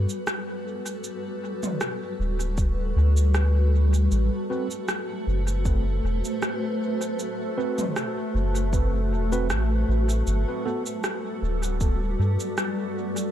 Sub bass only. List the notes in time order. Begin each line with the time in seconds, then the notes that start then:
2.19 D1
2.96 D2
4.11 A1
5.27 F#1
6.04 E1
8.34 F#1
9.11 E1
9.50 A1
9.88 A1
10.27 G1
11.42 D1
12.19 G2